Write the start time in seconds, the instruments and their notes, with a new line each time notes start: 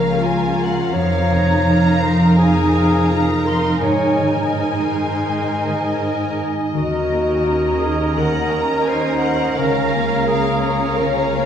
Already playing: cello section C#2, harp C#3 F3 A#3 A#4, viola section C#4 A#4, clarinet A#4, violin section F5 A#5
0.19 clarinet F4, violin section G#5
0.58 harp A#4
0.62 violin section F#5
0.94 harp F2, cello section F2, viola section D#4 A#4, clarinet C#5, violin section A#5
0.98 violin section F5
1.30 harp C3, violin section A#5
1.65 harp F4
2.00 harp A#4, clarinet C5
2.37 harp F2, clarinet G#4, violin section G#5
2.72 harp C3
3.08 harp F4, violin section A#5
3.45 harp A#4, clarinet A#4, violin section C6
3.81 harp G#2, cello section G#2, clarinet C#5, violin section D#5 G#5
4.19 harp D#3
4.56 harp D#4, clarinet C5
4.91 harp G#4
5.28 harp G#2
5.65 harp D#3
6.01 harp D#4
6.37 harp G#4
6.73 cello section D#2, harp D#3, viola section C#4 A#4, clarinet F#4, violin section A#5
7.10 harp A#3
7.45 harp D#4
7.79 clarinet G#4, harp A#4
8.16 harp D#3, clarinet A#4, violin section F#5
8.50 harp A#3, violin section A#5
8.85 harp D#4, clarinet C5, violin section G#5
9.20 harp A#4, violin section F#5
9.57 cello section C#2, harp C#3, clarinet A#4, violin section F5
9.93 harp A#3
10.27 clarinet G#4, violin section F5, harp F5
10.63 harp A#4, violin section C#5
10.96 harp C#3, clarinet A#4
11.33 harp A#3